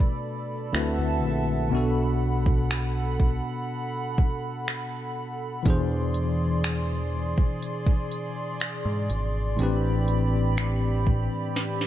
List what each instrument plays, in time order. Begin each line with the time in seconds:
Already playing: tine electric piano B2 A3 D4 F#4 B4, analog synth pad A4 D5 B5
0.00 kick
0.72 picked electric bass D2, tine electric piano D3 A3 C4 E4 F#4 B4, analog synth pad A4 E5 F#5 A5, finger snap
0.98 picked electric bass D2
1.23 picked electric bass A#1
1.69 picked electric bass B1, tine electric piano B2 B3 D4, analog synth pad A4 B5
1.75 tine electric piano F#4 A4
2.46 kick
2.71 finger snap
3.20 kick
4.18 kick
4.68 finger snap
5.63 picked electric bass E2, tine electric piano B2 E3 D4, analog synth pad G#4 D5 C6, kick, closed hi-hat
5.68 tine electric piano G#4 C5
6.14 closed hi-hat
6.64 finger snap, closed hi-hat
7.38 kick
7.62 closed hi-hat
7.87 kick
8.12 closed hi-hat
8.60 finger snap, closed hi-hat
8.86 picked electric bass G#2
9.10 picked electric bass G#1, closed hi-hat
9.56 picked electric bass A1, tine electric piano A2 E3 C4, analog synth pad C4 G4 B5, closed hi-hat
9.60 tine electric piano D4 G4 B4
10.08 closed hi-hat
10.58 finger snap, closed hi-hat
11.07 kick
11.56 snare, closed hi-hat
11.81 snare